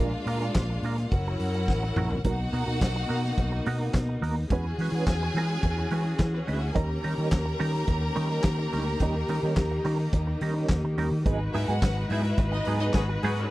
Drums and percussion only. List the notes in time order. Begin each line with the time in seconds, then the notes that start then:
0.27 open hi-hat
0.41 closed hi-hat
0.55 kick, snare, clap, closed hi-hat
0.83 open hi-hat
0.98 snare, closed hi-hat
1.11 kick, closed hi-hat
1.40 open hi-hat
1.54 closed hi-hat
1.68 kick, snare
1.96 mid tom
2.11 floor tom
2.24 kick, closed hi-hat
2.53 open hi-hat
2.81 kick, snare, clap, closed hi-hat
3.10 open hi-hat
3.24 snare
3.38 kick, closed hi-hat
3.66 open hi-hat
3.94 kick, snare, clap, closed hi-hat
4.23 open hi-hat
4.50 kick, closed hi-hat
4.79 open hi-hat
5.07 kick, snare, clap, closed hi-hat
5.35 open hi-hat
5.63 kick, closed hi-hat
5.91 open hi-hat
6.19 kick, snare, clap, closed hi-hat
6.48 open hi-hat
6.75 kick, closed hi-hat
7.04 open hi-hat
7.32 kick, snare, clap, closed hi-hat
7.60 open hi-hat
7.74 snare
7.87 kick, closed hi-hat
8.16 open hi-hat
8.43 kick, snare, clap, closed hi-hat
8.73 open hi-hat
9.00 kick, closed hi-hat
9.28 open hi-hat
9.56 kick, snare, clap, closed hi-hat
9.85 open hi-hat
10.13 kick, closed hi-hat
10.41 open hi-hat
10.69 kick, snare, clap, closed hi-hat
10.98 open hi-hat
11.26 kick, closed hi-hat
11.54 open hi-hat
11.69 closed hi-hat
11.82 kick, snare, clap, closed hi-hat
12.10 open hi-hat
12.24 closed hi-hat
12.38 kick, closed hi-hat
12.65 open hi-hat
12.80 closed hi-hat
12.93 kick, snare, clap, closed hi-hat
13.23 open hi-hat
13.36 closed hi-hat